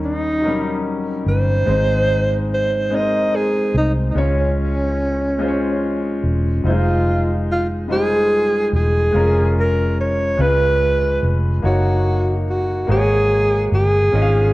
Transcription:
Already playing: D#2 D#3 G3 C#4 D#4 A#4
0.05 D#4
0.42 F#3 C#4 D#4 A#4
0.48 G3
1.26 G1 C5
1.66 G#1 G#2 G#3 C4 D#4 C5
2.54 C5
2.90 G#3 C4 D#4 A#4
2.95 D#5
3.00 C5
3.36 G#4
3.75 C2 D#4
4.11 D#4
4.15 C#2 C#3 G#3 C#4 F4 C#5
4.20 C#4
5.39 G#3 C#4 F4 C5
5.48 C#5
6.24 E1
6.64 F1 F#3 D#4 F4 C5
6.68 G#3 F4
7.52 F4
7.88 G3 D#4 F4 C5
7.92 G#3 G#4
8.73 E1 G#4
9.12 F1 G#3 C#4 F4 A#4
9.60 A#4
10.01 C#5
10.37 C#2 C#3 G#3 C#4 F4 B4
11.23 F1
11.62 F#1 A#3 D#4 F#4 C#5
12.49 F#4
12.87 G#1 G#3 A#3 F#4 G#4 C5
12.91 G#4
12.97 C#5
13.72 G1 G#4
14.12 G#1 G#2 C#4 F4 G#4 D#5
14.22 F5

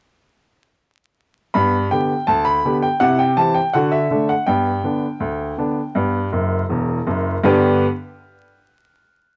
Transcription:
1.54 G2 B3 B5
1.91 D3 B3 G4 G5
2.27 D2 A5
2.45 B5
2.65 D3 B3 G4
2.82 G5
3.00 C3 E4 F#5
3.19 G5
3.37 E3 C4 G4 A5
3.54 G5
3.74 D3 F#4 F#5
3.92 E5
4.10 D3 A3 D4
4.29 F#5
4.46 G2 B3 G5
4.83 D3 B3 D4
5.20 D2
5.58 D3 B3 D4
5.95 G2 B3
6.32 F#1 F#2
6.69 E1 E2
7.07 F#1 F#2
7.44 G2 D3 B3 D4 G4 B4

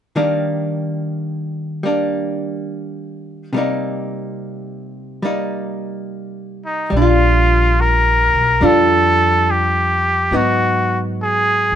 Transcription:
0.16 D#3 G3 A#3 D4
1.83 G3 A#3 D4
3.53 C3 G3 A#3
3.58 D#4
5.23 G3 A#3 D#4
6.66 D#4
6.90 A#1 G3
6.97 D4 F4
7.02 F4
7.81 A#4
8.33 B1
8.61 F2 G3 D4 F4
8.65 A4
9.51 G4
10.31 G#2 F#3 B3 D#4
10.37 F#4
11.23 G#4
11.72 C2

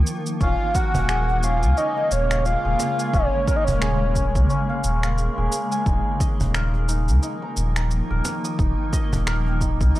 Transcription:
Already playing: D#3 F3 A#3
0.07 cabasa
0.26 cabasa
0.41 D#1 C#3 G#3 C#4 F5, kick, cabasa
0.75 A#4 F#5, kick, cabasa
0.95 D#1, cajon bass, cabasa
1.09 G#4, finger snap, cabasa
1.29 cajon slap
1.43 C#4 F5, cabasa
1.63 C#2, cabasa
1.77 C#4 D#5, cabasa
1.97 F5
2.11 D#1 C#5, cabasa
2.31 F5, finger snap, cabasa
2.45 F5, cabasa
2.65 D#1 G#4
2.80 cajon slap, cabasa
2.99 G#5, cabasa
3.13 D#1 C#4 C#5, kick, cabasa
3.48 A#4 C#5, kick, cabasa
3.56 D#5
3.64 D#1 C#5, cajon bass, cabasa
3.82 G#4, finger snap, cabasa
4.16 C#4, kick, cabasa
4.35 C#2, kick, cabasa
4.50 C#4, cabasa
4.69 F5
4.84 D#1, cabasa
5.03 F5, finger snap, cabasa
5.18 cabasa
5.38 D#1 G#4
5.52 cabasa
5.72 G#5, cabasa
5.86 D#1 D#3 F3 A#3 D#4, kick, cabasa
6.20 D#5, kick, cabasa
6.40 D#1, cajon bass, cabasa
6.54 A#4, finger snap, cabasa
6.74 cajon slap
6.88 D#4, cabasa
7.08 C#2, cabasa
7.22 D#4, cabasa
7.42 A#5
7.57 D#1, cabasa
7.76 A#5, finger snap, cabasa
7.91 cabasa
8.10 D#1 A#4
8.25 cajon slap, cabasa
8.45 D#6, cabasa
8.59 D#1 D#4, kick, cabasa
8.93 D#5, kick, cabasa
9.13 D#1, cajon bass, cabasa
9.27 A#4, finger snap, cabasa
9.46 cajon slap
9.61 D#4, kick, cabasa
9.81 C#2, kick, cabasa
9.95 D#4, cabasa

